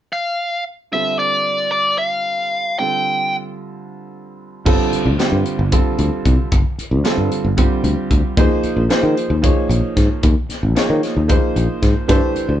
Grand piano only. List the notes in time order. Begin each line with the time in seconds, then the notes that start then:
0.92 D3 G3 C4 F4 A4
2.79 D3 G3 C4 F4 A4
4.65 D3 G3 C4 F4 A4
5.19 D3 G3 C4 F4 G4
5.72 D3 G3 C4 F4 A4
7.04 D3 G3 C4 F4 A4
7.57 D3 G3 C4 F4 G4
8.37 F3 A#3 D#4 G#4 C5
8.89 F3 A#3 D#4 G#4 C5
9.42 F3 A#3 D#4 G#4 C#5
10.75 F3 A#3 D#4 G#4 C#5
11.28 F3 A#3 D#4 G#4 C5
12.08 E3 A3 D4 G4 C5